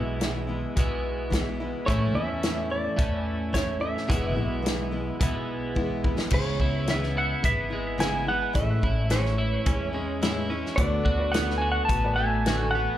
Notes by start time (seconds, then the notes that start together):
Already playing: B1 E2 B2 E3 G#3 B3 E4 E5
0.20 E3 G#3 B3 E4, snare, closed hi-hat
0.47 E3 G#3 B3 E4
0.76 B1 E2 B2 E3 G#3 B3 E4, kick, closed hi-hat
1.30 E3 G#3 B3 E4, kick, snare, closed hi-hat
1.60 E3 G#3 B3 E4
1.86 A1 A2 E3 A3 C#4 E4 C#5, kick, closed hi-hat
2.14 E2 A3 C#4 E4 E5
2.43 E3 A3 C#4 E4, snare, closed hi-hat
2.70 A3 E4 D5
2.97 E2 A2 E3 A3 C#4 E4, kick, closed hi-hat
3.53 E3 A3 C#4 E4 C#5, kick, snare, closed hi-hat
3.80 A3 C#4 E4 E5
3.97 snare
4.08 E1 E2 B2 E3 G#3 B3 E4, kick, closed hi-hat
4.35 B1 E3 G#3 B3 E4
4.62 E3 G#3 B3 E4, closed hi-hat
4.67 snare
4.91 E3 G#3 B3 E4
5.20 B1 E2 B2 E3 G#3 B3 E4, kick, closed hi-hat
5.75 E3 G#3 B3 E4, kick
6.04 E3 G#3 B3 E4, kick
6.19 snare
6.30 C#2 C#3 E3 G#3 B3 E4 C#5, kick, crash
6.60 C#2 G#3 B3 E4, kick
6.87 C#3 E3 G#3 B3 E4 E5, snare, closed hi-hat
7.03 snare
7.17 E4 F#5
7.43 G#1 E3 G#3 B3 E4 E5, kick, closed hi-hat
7.70 G#3 B3 E4
7.98 C#3 E3 G#3 B3 E4 G#5, snare, closed hi-hat
8.26 G#3 B3 E4 F#5
8.53 A1 A2 E3 G#3 C#4 E4 E5, kick, closed hi-hat
8.81 A1 G#3 C#4 E4, kick
9.10 A2 E3 G#3 C#4 E4 C#5, snare, closed hi-hat
9.25 snare
9.38 E4
9.66 E2 E3 G#3 C#4 E4, kick, closed hi-hat
9.93 G#3 C#4 E4
10.22 A2 E3 G#3 C#4 E4, snare, closed hi-hat
10.50 G#3 C#4 E4
10.66 snare
10.76 D2 D3 A3 B3 F#4 B4 D5, kick, closed hi-hat
11.06 D2 A3 B3 F#4, kick
11.19 F#4 B4 D5
11.32 D3 A3 B3 F#4 F#5, snare, closed hi-hat
11.50 snare
11.58 F#4 G#5
11.72 F#5
11.85 A1 D3 A3 A5
11.89 B3 F#4, kick, closed hi-hat
12.04 F#4 B4 D5
12.16 B3 F#4 G#5
12.20 A3
12.46 D3 A3 B3 F#4, snare, closed hi-hat
12.71 F#5
12.75 A3 B3 F#4